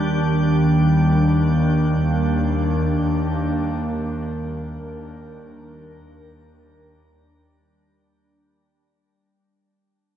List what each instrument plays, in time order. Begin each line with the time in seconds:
Already playing: double bass section D#2, ambient pad D#3 A#3 G4, synth drone G3 D4, synth texture G5 G6
0.82 ambient pad D4
3.38 ambient pad A#4